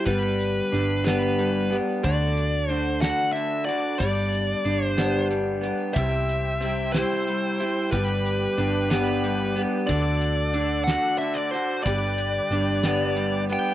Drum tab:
HH |xxxxxx|xxxxxx|xxxxxx|xxxxxx|
SD |---o--|---o--|---o--|---o--|
BD |o-----|o-----|o-----|o-----|

HH |xxxxxx|xxxxxx|xxxxxx|
SD |---o--|---o--|---o--|
BD |o-----|o-----|o-----|